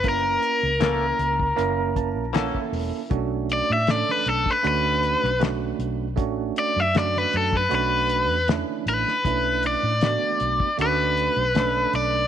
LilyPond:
<<
  \new Staff \with { instrumentName = "Overdriven electric guitar" } { \time 4/4 \key b \minor \tempo 4 = 78 ais'2. r4 | r8 d''16 e''16 d''16 b'16 a'16 b'16 b'4 r4 | r8 d''16 e''16 d''16 b'16 a'16 b'16 b'4 r8 b'8~ | b'8 d''4. b'4. d''8 | }
  \new Staff \with { instrumentName = "Tine electric piano" } { \time 4/4 \key b \minor << { r2 r8 a''8 fis''16 e''8. | r1 | r1 | r1 | } \\ { <ais cis' e' ais'>4 <ais cis' e' ais'>4 <ais cis' e' ais'>4 <ais cis' e' a'>4 | <a cis' d' fis'>4 <a cis' d' a'>4 <a cis' d' fis'>4 <a cis' d' fis'>4 | <a cis' d' fis'>4 <a cis' d' fis'>4 <a cis' d' fis'>4 <a cis' d' e'>4 | <a cis' d' e'>4 <a b d' fis'>4 <a cis' d' fis'>4 <a cis' d' a'>4 | } >> }
  \new Staff \with { instrumentName = "Clean electric guitar" } { \time 4/4 \key b \minor r4 <e ais cis' a'>8 r4. <e ais cis' a'>8 r8 | r1 | r1 | r1 | }
  \new Staff \with { instrumentName = "Fingered electric bass" } { \clef bass \time 4/4 \key b \minor fis,,8 r16 cis,8. cis,8 fis,,8. ais,,8 r16 e,,16 r16 | b,,8. a,8 r16 b,,16 r16 d,8. b,,8. b,,8 | a,,8 r16 fis,8. fis,8 b,,8. e,8 r16 a,,16 r16 | b,,8. a,8 r16 b,,16 r16 d,8. b,,8. b,,8 | }
  \new DrumStaff \with { instrumentName = "Drums" } \drummode { \time 4/4 <hh bd>8 hh8 <hh sn>8 hh16 bd16 hh8 <hh bd>8 <hh sn>16 bd16 hho8 | <hh bd>8 hh8 <hh sn>16 sn16 hh16 bd16 hh8 hh16 sn16 <hh sn>8 hh8 | <hh bd>8 hh8 <hh sn>16 sn16 hh16 bd16 hh8 hh8 <hh sn>8 hh16 sn16 | <hh bd>8 hh8 <hh sn>8 hh16 bd16 hh8 hh8 <hh sn>8 hh8 | }
>>